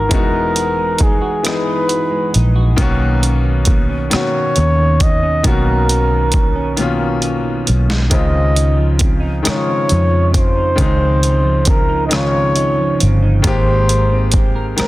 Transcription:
Already playing: G#1 E3 G#3 B3 D#4 F#4 G#4 A#4
0.09 E1 E3 G#3 B3, kick, closed hi-hat
0.13 D#4 F#4
0.33 D#4
0.56 F#4, closed hi-hat
0.78 G#3
0.98 D#4, kick, closed hi-hat
1.03 G#4
1.21 F#4
1.43 E3 G#3 B3 D#4 B4, cross-stick, closed hi-hat
1.48 G#4
1.67 D#4
1.88 F#4, closed hi-hat
2.11 G#3
2.34 A#1 D#4, closed hi-hat
2.55 F#4
2.76 B1 B2 D#3 A#3, kick, closed hi-hat
2.80 C#4 F#4
3.00 A#3
3.22 C#4, closed hi-hat
3.45 D#3
3.65 A#3, kick, closed hi-hat
3.89 C#4
4.10 B2 D#3 A#3 C#5, muted fingered electric bass stroke, cross-stick, closed hi-hat
4.14 C#4 F#4
4.33 A#3
4.55 D#2 C#4, closed hi-hat
4.78 D#3
5.00 A#3 D#5, kick, closed hi-hat
5.23 C#4
5.43 B1 B2 D#3 A#3 C#4 A#4, kick, closed hi-hat
5.48 F#4
5.67 A#3
5.89 C#4, closed hi-hat
6.12 D#3
6.32 A#3, kick, closed hi-hat
6.56 C#4
6.77 B2 D#3 A#3 C#4, closed hi-hat
6.82 F4
7.00 A#3
7.22 C#4, closed hi-hat
7.44 D#3
7.66 B1 A#3, closed hi-hat
7.90 C#4, snare
8.10 C#3 D#3 G#3 C4 D#5, kick, closed hi-hat
8.15 F4
8.33 C4
8.55 D#4, closed hi-hat
8.77 F3
8.98 C4, kick, closed hi-hat
9.20 D#4
9.43 C#3 D#3 G#3 D#4, closed hi-hat
9.47 D#4 C#5, muted fingered electric bass stroke, cross-stick
9.54 F4
9.66 C4
9.88 F2 D#4, closed hi-hat
10.10 F3
10.32 C4, kick, closed hi-hat
10.37 C5
10.56 D#4
10.76 C#2 C#3 D#3 G#3 C4, kick, closed hi-hat
10.81 D#4
11.00 C4
11.23 D#4, closed hi-hat
11.44 F3
11.65 C4 A#4, kick, closed hi-hat
11.89 D#4
12.06 D#3 D#5
12.11 C#3 G#3 D#4 F4 C#5, cross-stick, closed hi-hat
12.33 C4
12.56 D#4, closed hi-hat
12.78 F3
12.99 G1 C4, closed hi-hat
13.22 D#4
13.42 G#1 D#3 G#3 A#3 C4 C5, kick, closed hi-hat
13.47 G4
13.67 G4
13.89 A#4, closed hi-hat
14.12 C4
14.32 G4, kick, closed hi-hat
14.55 A#4
14.76 D#3 G#3 A#3 C4 A#4, muted fingered electric bass stroke, cross-stick, closed hi-hat
14.81 A#4

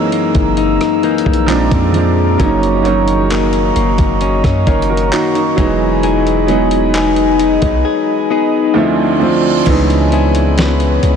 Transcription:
Already playing: F#2 E3 G#3 A#3 C4 C#4 D#4 G#4 A#5 E6
0.12 A#3, closed hi-hat
0.35 F#1, kick, closed hi-hat
0.57 D#4, closed hi-hat
0.81 cross-stick, closed hi-hat
1.03 E3 A#3 D#4, closed hi-hat
1.18 closed hi-hat
1.26 A#1, kick
1.33 closed hi-hat
1.46 A#2 F3 G#3 C4 G#4 F5 D6, clap, closed hi-hat
1.51 D4
1.71 F2, kick, closed hi-hat
1.92 F3 G#3 C4, closed hi-hat
1.96 D4
2.37 F#1 F#2 F#3 A#3 C#4 F#4 D#5 C#6, kick, closed hi-hat
2.42 D#4
2.63 closed hi-hat
2.83 D#3 F#3 A#3 C#4, closed hi-hat
2.87 D#4
3.08 closed hi-hat
3.30 D#3 A#3 C#4, clap, closed hi-hat
3.53 closed hi-hat
3.76 F#1 A#3, closed hi-hat
3.98 F#1, kick, closed hi-hat
4.21 C#4, closed hi-hat
4.44 F#2, kick, cross-stick, closed hi-hat
4.67 F#1 D#3 A#3 C#4 A#4 C#5, kick, closed hi-hat
4.82 closed hi-hat
4.89 F#4 A#4
4.97 closed hi-hat
5.12 A#3 D#4 F#4, clap, closed hi-hat
5.35 D#4, closed hi-hat
5.56 E1 E3 F#3 G#3 B3 D#4 G#5 B5, kick, closed hi-hat
5.60 D#4
6.03 E3 G#4, closed hi-hat
6.27 closed hi-hat
6.47 F#3 G#3 B3, closed hi-hat
6.51 D#4
6.71 closed hi-hat
6.94 B3 D#4 G#4, clap, closed hi-hat
7.16 closed hi-hat
7.39 D#4, closed hi-hat
7.62 B1, kick, closed hi-hat
7.85 G#4, reverse cymbal
8.30 B3 D#4 G#4
8.74 D2 D3 F3 A3 C4 D4 D5 A5 C6
8.78 E4
9.19 D2 F3 A3 C4
9.24 F4
9.65 C#2 C#3 E3 G#3 B3 C#4 C#5 G#5 B5, kick, closed hi-hat, crash
9.69 D#4
9.90 closed hi-hat
10.12 B3 E4 G#4, closed hi-hat
10.35 closed hi-hat
10.58 B3, snare, closed hi-hat
10.80 closed hi-hat
11.03 C#2, closed hi-hat

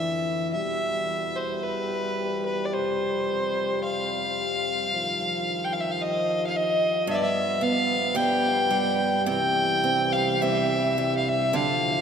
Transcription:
Already playing: F2 D3 E3 E5
0.53 E2 B2 G3 E5
1.36 C5
1.63 B4
2.46 B4
2.65 D5
2.74 F2 C3 C5
3.84 F5
4.92 G2 D#3 F3
5.65 G5
5.73 F5
5.80 E5
5.92 F5
6.01 D#5
6.47 F5
6.56 D#5
7.07 G2 F3 B3 E5
7.14 D5
7.23 E5
7.61 B3 F5
8.15 G3 B3 G4 G5
8.71 G3
9.25 C2 C3 E3 G5
9.84 C4
10.12 F5
10.41 G3 C4 E4 E5
10.98 G3
11.18 F5
11.28 E5
11.52 D2 A2 D3 F3 F5

